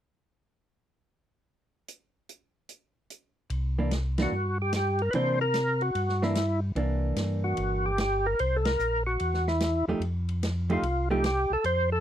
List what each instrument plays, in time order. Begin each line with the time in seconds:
1.88 closed hi-hat
2.29 closed hi-hat
2.69 closed hi-hat
3.10 closed hi-hat
3.50 tonewheel organ C2, ride
3.79 hollow-body jazz guitar E3 A#3 D4
3.91 snare, hi-hat pedal, ride
4.18 hollow-body jazz guitar E3 A#3 D4, snare, ride
4.22 tonewheel organ F#4
4.32 tonewheel organ G2
4.62 tonewheel organ G4
4.73 tonewheel organ G4, snare, hi-hat pedal, ride
4.99 tonewheel organ A#4, ride
5.11 tonewheel organ C3 B4, hollow-body jazz guitar E3, ride
5.15 hollow-body jazz guitar A#3 D4, tonewheel organ C5
5.41 tonewheel organ A#4
5.54 snare, hi-hat pedal, ride
5.81 tonewheel organ F#4, ride
5.95 tonewheel organ G2, ride
6.09 snare
6.22 hollow-body jazz guitar E3 A#3 D4, tonewheel organ E4, snare
6.35 snare, hi-hat pedal, ride
6.75 tonewheel organ C2, hollow-body jazz guitar E3 A#3 D4, ride
7.16 tonewheel organ G2, snare, hi-hat pedal, ride
7.44 tonewheel organ F#4
7.57 tonewheel organ G1, ride
7.86 tonewheel organ G4
7.98 tonewheel organ G4, snare, hi-hat pedal, ride
8.26 tonewheel organ A#4
8.39 tonewheel organ C2 C5, ride
8.56 tonewheel organ A4
8.65 tonewheel organ A#4, snare, ride
8.79 tonewheel organ A#1, hi-hat pedal
9.07 tonewheel organ F#4
9.20 tonewheel organ E2, ride
9.34 snare
9.47 tonewheel organ E4, snare
9.60 snare, hi-hat pedal, ride
9.88 tonewheel organ E2, hollow-body jazz guitar F3 A3 D#4 G4
10.00 tonewheel organ F2, ride
10.29 ride
10.43 snare, hi-hat pedal, ride
10.70 hollow-body jazz guitar F3 A3 D#4 G4, tonewheel organ F4, ride
10.82 tonewheel organ C2, ride
11.11 hollow-body jazz guitar F3 A3 D#4 G4, tonewheel organ G4
11.24 tonewheel organ G4, snare, hi-hat pedal, ride
11.50 tonewheel organ C2 A4
11.64 tonewheel organ F2 C5, ride
11.92 tonewheel organ A4